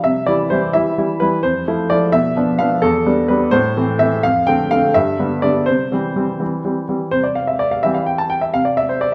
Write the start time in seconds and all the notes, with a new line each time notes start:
0.04 C3 E5
0.26 E3 G3 E4 D5
0.50 E3 G3 E4 C5
0.73 E3 G3 E4 E5
0.98 E3 G3 E4
1.20 E3 G3 E4 B4
1.43 F2 C5
1.67 F3 A3 E4
1.90 F3 A3 E4 D5
2.12 B2 E5
2.36 F3 B3 D4
2.59 F3 B3 D4 F5
2.82 E2 A4
3.06 G3 B3 D4
3.28 G3 B3 D4 B4
3.51 A2 C5
3.77 E3 A3 C4
3.99 E3 A3 C4 E5
4.23 F2 F5
4.47 D3 A3 C4 G5
4.71 D3 A3 C4 F5
4.94 G2 E5
5.19 D3 G3 B3
5.42 D3 G3 B3 D5
5.66 C3 C5
5.92 E3 G3 C4
6.16 E3 G3 C4
6.40 E3 G3 C4
6.64 E3 G3 C4
6.89 E3 G3 C4
7.11 C3 C5
7.24 D5
7.35 F5
7.47 E5
7.59 D5
7.71 F5
7.83 E3 G3 C4 E5
7.94 F5
8.06 G5
8.18 A5
8.30 G5
8.41 E5
8.54 C3 F5
8.65 D5
8.77 E5
8.89 C5
9.01 D5